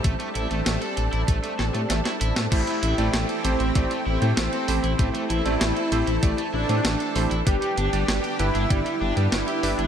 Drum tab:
CC |----------------|x---------------|----------------|----------------|
HH |xxxxxxxxxx-xxxxx|xxxxxxxxxx-xxxox|xxxxxxxxxx-xxxox|xxxxxxxxxx-xxxox|
SD |----o-----o-oo-o|----o-------o---|----o-------o---|----o-------o---|
BD |o-------o-------|o-------o-------|o-------o-------|o-------o-------|